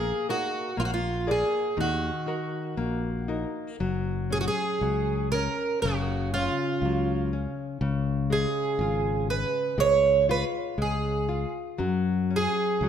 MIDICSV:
0, 0, Header, 1, 4, 480
1, 0, Start_track
1, 0, Tempo, 996678
1, 851, Time_signature, 2, 2, 24, 8
1, 1336, Tempo, 1018676
1, 2776, Tempo, 988468
1, 5176, Tempo, 1023891
1, 6168, End_track
2, 0, Start_track
2, 0, Title_t, "Twelve-string acoustic guitar"
2, 0, Program_c, 0, 25
2, 0, Note_on_c, 0, 68, 84
2, 128, Note_off_c, 0, 68, 0
2, 145, Note_on_c, 0, 66, 75
2, 382, Note_off_c, 0, 66, 0
2, 384, Note_on_c, 0, 65, 64
2, 408, Note_off_c, 0, 65, 0
2, 410, Note_on_c, 0, 66, 56
2, 442, Note_off_c, 0, 66, 0
2, 451, Note_on_c, 0, 65, 63
2, 625, Note_off_c, 0, 65, 0
2, 631, Note_on_c, 0, 68, 65
2, 866, Note_off_c, 0, 68, 0
2, 869, Note_on_c, 0, 66, 66
2, 1569, Note_off_c, 0, 66, 0
2, 2066, Note_on_c, 0, 68, 80
2, 2097, Note_off_c, 0, 68, 0
2, 2106, Note_on_c, 0, 66, 70
2, 2132, Note_off_c, 0, 66, 0
2, 2138, Note_on_c, 0, 68, 80
2, 2532, Note_off_c, 0, 68, 0
2, 2534, Note_on_c, 0, 70, 84
2, 2757, Note_off_c, 0, 70, 0
2, 2771, Note_on_c, 0, 66, 86
2, 3020, Note_off_c, 0, 66, 0
2, 3022, Note_on_c, 0, 65, 74
2, 3478, Note_off_c, 0, 65, 0
2, 3987, Note_on_c, 0, 68, 79
2, 4460, Note_off_c, 0, 68, 0
2, 4462, Note_on_c, 0, 71, 73
2, 4703, Note_off_c, 0, 71, 0
2, 4704, Note_on_c, 0, 73, 101
2, 4923, Note_off_c, 0, 73, 0
2, 4950, Note_on_c, 0, 71, 81
2, 5014, Note_off_c, 0, 71, 0
2, 5197, Note_on_c, 0, 68, 59
2, 5526, Note_off_c, 0, 68, 0
2, 5921, Note_on_c, 0, 68, 84
2, 6168, Note_off_c, 0, 68, 0
2, 6168, End_track
3, 0, Start_track
3, 0, Title_t, "Nylon-string guitar"
3, 0, Program_c, 1, 24
3, 0, Note_on_c, 1, 58, 60
3, 140, Note_on_c, 1, 63, 43
3, 142, Note_on_c, 1, 70, 52
3, 145, Note_on_c, 1, 68, 41
3, 330, Note_off_c, 1, 63, 0
3, 331, Note_off_c, 1, 70, 0
3, 333, Note_off_c, 1, 68, 0
3, 366, Note_off_c, 1, 58, 0
3, 372, Note_on_c, 1, 58, 58
3, 612, Note_on_c, 1, 68, 43
3, 616, Note_on_c, 1, 70, 36
3, 617, Note_on_c, 1, 74, 46
3, 803, Note_off_c, 1, 68, 0
3, 804, Note_off_c, 1, 70, 0
3, 804, Note_off_c, 1, 74, 0
3, 835, Note_off_c, 1, 58, 0
3, 852, Note_on_c, 1, 51, 58
3, 1090, Note_on_c, 1, 63, 38
3, 1095, Note_on_c, 1, 66, 38
3, 1098, Note_on_c, 1, 70, 43
3, 1321, Note_off_c, 1, 51, 0
3, 1336, Note_on_c, 1, 58, 55
3, 1483, Note_off_c, 1, 63, 0
3, 1486, Note_off_c, 1, 66, 0
3, 1486, Note_off_c, 1, 70, 0
3, 1576, Note_on_c, 1, 63, 38
3, 1579, Note_on_c, 1, 66, 33
3, 1580, Note_on_c, 1, 70, 42
3, 1771, Note_off_c, 1, 63, 0
3, 1771, Note_off_c, 1, 66, 0
3, 1771, Note_off_c, 1, 70, 0
3, 1806, Note_off_c, 1, 58, 0
3, 1821, Note_on_c, 1, 54, 57
3, 2057, Note_on_c, 1, 61, 44
3, 2291, Note_off_c, 1, 61, 0
3, 2295, Note_off_c, 1, 54, 0
3, 2300, Note_on_c, 1, 54, 47
3, 2532, Note_off_c, 1, 54, 0
3, 2545, Note_on_c, 1, 61, 47
3, 2773, Note_off_c, 1, 61, 0
3, 2784, Note_on_c, 1, 49, 62
3, 3026, Note_on_c, 1, 61, 49
3, 3254, Note_off_c, 1, 61, 0
3, 3271, Note_on_c, 1, 54, 52
3, 3495, Note_off_c, 1, 54, 0
3, 3504, Note_on_c, 1, 61, 48
3, 3719, Note_off_c, 1, 49, 0
3, 3732, Note_off_c, 1, 61, 0
3, 3738, Note_on_c, 1, 49, 59
3, 3977, Note_on_c, 1, 56, 47
3, 4208, Note_off_c, 1, 56, 0
3, 4223, Note_on_c, 1, 65, 57
3, 4451, Note_off_c, 1, 65, 0
3, 4462, Note_on_c, 1, 56, 46
3, 4675, Note_off_c, 1, 49, 0
3, 4690, Note_off_c, 1, 56, 0
3, 4696, Note_on_c, 1, 56, 63
3, 4943, Note_on_c, 1, 65, 48
3, 5174, Note_off_c, 1, 56, 0
3, 5174, Note_off_c, 1, 65, 0
3, 5180, Note_on_c, 1, 56, 52
3, 5408, Note_off_c, 1, 56, 0
3, 5417, Note_on_c, 1, 65, 45
3, 5650, Note_off_c, 1, 65, 0
3, 5650, Note_on_c, 1, 54, 59
3, 5895, Note_on_c, 1, 61, 49
3, 6129, Note_off_c, 1, 61, 0
3, 6134, Note_off_c, 1, 54, 0
3, 6139, Note_on_c, 1, 54, 51
3, 6168, Note_off_c, 1, 54, 0
3, 6168, End_track
4, 0, Start_track
4, 0, Title_t, "Fretless electric bass"
4, 0, Program_c, 2, 35
4, 0, Note_on_c, 2, 34, 90
4, 54, Note_off_c, 2, 34, 0
4, 377, Note_on_c, 2, 34, 77
4, 686, Note_off_c, 2, 34, 0
4, 856, Note_on_c, 2, 39, 82
4, 1009, Note_off_c, 2, 39, 0
4, 1336, Note_on_c, 2, 34, 72
4, 1651, Note_off_c, 2, 34, 0
4, 1822, Note_on_c, 2, 30, 80
4, 2133, Note_off_c, 2, 30, 0
4, 2297, Note_on_c, 2, 37, 77
4, 2608, Note_off_c, 2, 37, 0
4, 2779, Note_on_c, 2, 30, 91
4, 3090, Note_off_c, 2, 30, 0
4, 3255, Note_on_c, 2, 37, 82
4, 3566, Note_off_c, 2, 37, 0
4, 3737, Note_on_c, 2, 37, 94
4, 4048, Note_off_c, 2, 37, 0
4, 4212, Note_on_c, 2, 32, 92
4, 4524, Note_off_c, 2, 32, 0
4, 4693, Note_on_c, 2, 37, 88
4, 5007, Note_off_c, 2, 37, 0
4, 5179, Note_on_c, 2, 37, 77
4, 5489, Note_off_c, 2, 37, 0
4, 5656, Note_on_c, 2, 42, 84
4, 5969, Note_off_c, 2, 42, 0
4, 6131, Note_on_c, 2, 37, 76
4, 6168, Note_off_c, 2, 37, 0
4, 6168, End_track
0, 0, End_of_file